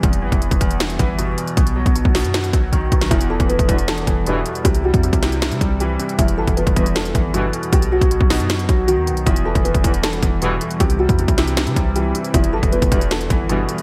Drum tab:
HH |xx-xxxxxxxx-x-xx|xx-xx-oxxxx-x-xx|xx-xxxxxxxx-x-xx|xx-xxxxxxxx-x-xx|
SD |--------o-------|------o-o------o|--------o-------|------o-o-------|
BD |o--o-oo---o-----|o--o-o----o-o-o-|o--o-oo---o-----|o--o-o----o-----|

HH |xx-xxxxxxxx-x-xx|xx-xx-oxxxx-x-xx|xx-xxxxxxxx-x-xx|xx-xxxxxxxx-x-xx|
SD |--------o-------|------o-o-------|--------o-------|------o-o-------|
BD |o--o-oo---o-----|o--o-o----o-----|o--o-oo---o-----|o--o-o----o-----|

HH |xx-xxxxxxxx-x-xx|
SD |--------o-------|
BD |o--o-oo---o-----|